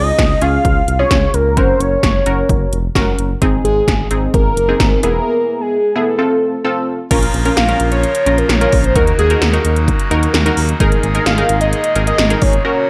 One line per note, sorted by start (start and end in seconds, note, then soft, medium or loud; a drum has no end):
0.00 0.12 C#2 loud
0.00 0.24 C#4 medium
0.00 0.24 F4 medium
0.00 0.24 G#4 loud
0.00 0.43 D#5 loud
0.19 0.35 C#2 loud
0.19 kick loud
0.19 snare loud
0.19 closed hi-hat medium
0.42 0.58 C#2 loud
0.42 0.84 C#4 medium
0.42 0.84 F4 medium
0.42 0.84 G#4 medium
0.42 0.99 F5 loud
0.42 closed hi-hat medium
0.65 0.81 C#2 loud
0.65 kick loud
0.65 closed hi-hat medium
0.88 1.04 C2 medium
0.88 closed hi-hat medium
0.99 1.42 C#4 medium
0.99 1.42 F4 medium
0.99 1.42 G#4 medium
0.99 1.35 C#5 loud
1.11 1.27 C#2 loud
1.11 kick loud
1.11 snare loud
1.11 closed hi-hat medium
1.34 1.59 C#2 loud
1.34 1.59 A#4 medium
1.34 closed hi-hat medium
1.57 1.73 F#1 loud
1.57 2.08 C#4 medium
1.57 2.08 F#4 medium
1.57 2.08 A#4 medium
1.57 1.82 C5 loud
1.57 kick loud
1.57 closed hi-hat medium
1.80 1.96 F#1 loud
1.80 2.72 C#5 loud
1.80 closed hi-hat medium
2.03 2.19 F#1 loud
2.03 kick loud
2.03 snare loud
2.03 closed hi-hat medium
2.26 2.42 F#1 loud
2.26 2.78 C#4 medium
2.26 2.78 F#4 medium
2.26 2.78 A#4 medium
2.26 closed hi-hat medium
2.49 2.66 F#1 loud
2.49 kick loud
2.49 closed hi-hat medium
2.72 2.89 F1 medium
2.72 closed hi-hat medium
2.95 3.12 F#1 loud
2.95 3.30 C#4 medium
2.95 3.30 F#4 medium
2.95 3.30 A#4 loud
2.95 kick loud
2.95 snare loud
2.95 closed hi-hat medium
3.18 3.35 F#1 medium
3.18 closed hi-hat medium
3.42 3.58 G#1 loud
3.42 3.93 C4 loud
3.42 3.93 D#4 medium
3.42 3.93 G#4 loud
3.42 kick loud
3.42 closed hi-hat medium
3.64 3.81 G#1 medium
3.64 4.08 G#4 loud
3.64 closed hi-hat medium
3.88 4.04 G#1 loud
3.88 kick loud
3.88 snare loud
3.88 closed hi-hat medium
4.11 4.27 G#1 medium
4.11 4.54 C4 medium
4.11 4.54 D#4 medium
4.11 4.54 G#4 medium
4.11 closed hi-hat medium
4.34 4.50 G#1 loud
4.34 4.99 A#4 loud
4.34 kick loud
4.34 closed hi-hat medium
4.57 4.73 F#1 loud
4.57 closed hi-hat medium
4.69 5.03 C4 medium
4.69 5.03 D#4 medium
4.69 5.02 G#4 medium
4.80 4.96 G#1 loud
4.80 kick loud
4.80 snare loud
4.80 closed hi-hat medium
5.03 5.19 E1 medium
5.03 5.77 B3 medium
5.03 5.77 E4 medium
5.03 5.77 G#4 medium
5.03 5.63 A#4 loud
5.03 closed hi-hat medium
5.61 5.97 G#4 medium
5.96 6.19 B3 medium
5.96 6.19 E4 medium
5.96 6.19 G#4 medium
5.96 6.88 A4 loud
6.19 6.56 C4 medium
6.19 6.55 F4 medium
6.19 6.56 A4 medium
6.64 6.99 C4 medium
6.64 6.99 F4 medium
6.64 6.99 A4 loud
7.11 7.27 A#1 loud
7.11 8.94 C#3 medium
7.11 8.94 F3 medium
7.11 10.77 A#3 medium
7.11 7.36 C#4 medium
7.11 7.37 F4 medium
7.11 8.94 F4 medium
7.11 7.36 A#4 loud
7.11 8.94 A#4 medium
7.11 kick loud
7.11 closed hi-hat medium
7.11 crash medium
7.23 closed hi-hat medium
7.34 7.50 A#1 medium
7.34 closed hi-hat medium
7.45 7.63 C#4 medium
7.45 7.63 F4 medium
7.45 7.63 A#4 medium
7.45 closed hi-hat medium
7.57 7.73 A#1 loud
7.57 7.89 F5 loud
7.57 snare loud
7.57 closed hi-hat medium
7.68 8.11 C#4 medium
7.68 8.11 F4 medium
7.68 8.11 A#4 medium
7.68 closed hi-hat soft
7.80 8.04 A#1 loud
7.80 closed hi-hat medium
7.92 8.02 C#5 medium
7.92 closed hi-hat soft
8.03 8.39 C#5 loud
8.03 closed hi-hat medium
8.15 closed hi-hat medium
8.26 8.42 A#1 loud
8.26 8.52 C#4 medium
8.26 8.52 F4 medium
8.26 8.52 A#4 medium
8.26 closed hi-hat medium
8.38 8.51 A#4 medium
8.38 closed hi-hat soft
8.49 8.66 A#1 loud
8.49 8.86 C#5 loud
8.49 snare loud
8.49 closed hi-hat medium
8.61 8.87 C#4 medium
8.61 8.87 F4 medium
8.61 8.87 A#4 medium
8.61 closed hi-hat medium
8.72 8.97 A#1 loud
8.72 kick loud
8.72 open hi-hat medium
8.84 8.97 C5 medium
8.84 closed hi-hat medium
8.96 9.12 D#2 loud
8.96 10.78 C#3 medium
8.96 10.78 F#3 medium
8.96 12.61 D#4 medium
8.96 9.21 D#4 medium
8.96 10.78 F#4 medium
8.96 9.21 F#4 medium
8.96 9.21 A#4 medium
8.96 9.07 A#4 medium
8.96 kick loud
8.96 closed hi-hat medium
9.07 9.13 A#4 medium
9.07 closed hi-hat medium
9.19 9.35 D#2 loud
9.19 9.62 G#4 medium
9.19 closed hi-hat medium
9.30 9.47 D#4 medium
9.30 9.47 F#4 medium
9.30 9.47 A#4 medium
9.30 closed hi-hat medium
9.42 9.58 D#2 loud
9.42 snare loud
9.42 closed hi-hat medium
9.53 9.96 D#4 medium
9.53 9.96 F#4 medium
9.53 9.96 A#4 medium
9.53 closed hi-hat soft
9.65 9.89 D#2 loud
9.65 closed hi-hat medium
9.76 closed hi-hat soft
9.88 kick medium
9.88 closed hi-hat medium
9.99 closed hi-hat medium
10.11 10.27 D#2 loud
10.11 10.37 D#4 medium
10.11 10.37 F#4 medium
10.11 10.37 A#4 loud
10.11 closed hi-hat medium
10.23 closed hi-hat soft
10.34 10.50 D#2 loud
10.34 snare loud
10.34 closed hi-hat medium
10.46 10.71 D#4 medium
10.46 10.71 F#4 medium
10.46 10.71 A#4 loud
10.46 closed hi-hat medium
10.57 10.73 D#2 loud
10.57 open hi-hat medium
10.69 closed hi-hat medium
10.80 10.96 G#1 loud
10.80 12.90 A#2 medium
10.80 12.63 D#3 medium
10.80 12.63 G#3 medium
10.80 11.06 D#4 medium
10.80 12.63 G#4 medium
10.80 11.06 G#4 medium
10.80 11.06 A#4 loud
10.80 kick loud
10.80 closed hi-hat medium
10.92 closed hi-hat medium
11.03 11.19 G#1 loud
11.03 closed hi-hat medium
11.15 11.32 D#4 medium
11.15 11.32 G#4 medium
11.15 11.32 A#4 medium
11.15 closed hi-hat medium
11.26 11.42 G#1 loud
11.26 11.59 F5 loud
11.26 snare loud
11.26 closed hi-hat medium
11.38 11.81 D#4 medium
11.38 11.81 G#4 medium
11.38 11.81 A#4 medium
11.38 closed hi-hat soft
11.49 11.73 G#1 loud
11.49 closed hi-hat medium
11.61 12.04 D#5 loud
11.61 closed hi-hat soft
11.73 closed hi-hat medium
11.84 closed hi-hat medium
11.95 12.11 G#1 loud
11.95 12.21 D#4 medium
11.95 12.21 G#4 medium
11.95 12.21 A#4 medium
11.95 closed hi-hat medium
12.07 12.43 D#5 loud
12.07 closed hi-hat medium
12.18 12.35 G#1 loud
12.18 snare loud
12.18 closed hi-hat medium
12.30 12.56 D#4 medium
12.30 12.56 G#4 medium
12.30 12.56 A#4 medium
12.30 closed hi-hat medium
12.42 12.58 G#1 loud
12.42 12.64 C#5 medium
12.42 kick loud
12.42 open hi-hat medium
12.53 closed hi-hat medium
12.65 12.90 C#3 medium
12.65 12.90 F#3 medium
12.65 12.90 C#4 medium
12.65 12.90 F#4 medium
12.65 12.90 A#4 medium
12.65 12.90 C#5 loud